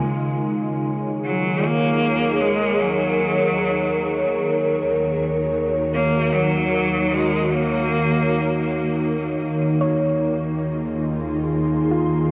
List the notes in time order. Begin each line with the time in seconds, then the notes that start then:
Already playing: D#4 F4
0.06 D#2 D#3 A#3
0.40 G#4 C#5
1.09 A#4
1.25 F#3
1.65 A#3
2.41 G#3
2.81 F#3
4.98 F#4
5.94 A#3
6.34 F#3
7.14 G#3
7.52 A#3
9.43 D#2
9.81 C#5
10.00 F4
10.23 G#4
10.44 C6
11.91 F4